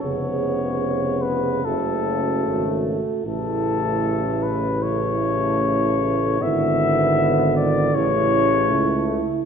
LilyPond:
<<
  \new Staff \with { instrumentName = "Cornet" } { \time 4/4 \key a \major \tempo 4 = 76 cis''4. b'8 a'4. r8 | a'4. b'8 cis''2 | e''4. d''8 cis''4. r8 | }
  \new Staff \with { instrumentName = "French horn section" } { \time 4/4 \key a \major gis'2 fis'2 | e'2 e'2 | e'2 e'2 | }
  \new Staff \with { instrumentName = "Trombone section" } { \time 4/4 \key a \major b2 a2 | a2 a2 | b2 a2 | }
  \new Staff \with { instrumentName = "Euphonium" } { \clef bass \time 4/4 \key a \major cis2 cis4. r8 | cis2 cis2 | d2 cis4. r8 | }
  \new Staff \with { instrumentName = "Tuba" } { \clef bass \time 4/4 \key a \major eis,,2 fis,,4 gis,,8 r8 | a,,1 | gis,,2 a,,4 cis,8 r8 | }
>>